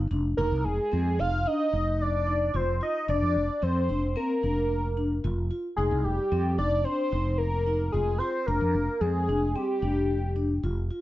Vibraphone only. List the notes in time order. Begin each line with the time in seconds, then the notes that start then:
0.11 D4
0.38 D#4
0.92 C4
1.19 D#4
1.46 D4
1.73 D#4
2.27 D#4
2.54 F4
2.81 F4
3.08 D4
3.62 C4
3.89 D4
4.16 C4
4.43 D4
4.97 D4
5.24 F4
5.51 F4
5.78 D#4
6.32 C4
6.58 D#4
6.85 D4
7.12 D#4
7.66 D#4
7.94 F4
8.20 F4
8.48 D4
9.01 C4
9.29 D4
9.56 C4
9.82 D4
10.36 D4
10.64 F4
10.91 F4